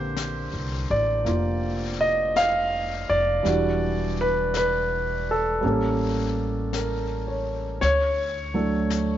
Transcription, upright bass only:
Already playing: A#1
0.53 C2
0.90 A1
1.26 F1
3.10 F1
3.45 E1
5.64 A1
7.82 D2

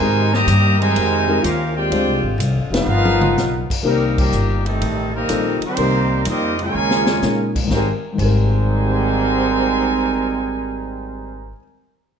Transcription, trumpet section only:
Already playing: D#4 A#4 C5 G#5
0.33 G4 C5 D#5 A#5
0.80 D#4 A#4 C5 G#5
1.42 C#4 G4 A#4 F5
1.76 F4 C5 D5 G5
2.74 D#4 A#4 B4 F5
3.85 G3 C4 D#4 A#4
4.18 A#3 C4 G4
4.66 G3 C4 D#4 A4
5.15 G3 C4 D#4 A#4
5.65 A#3 D#4 G4 C5
6.29 C4 G4 A#4 D#5
6.61 F4 A#4 C#5 G#5
7.72 D#4 A#4 C5 G#5
8.19 D#4 A#4 C5 G#5

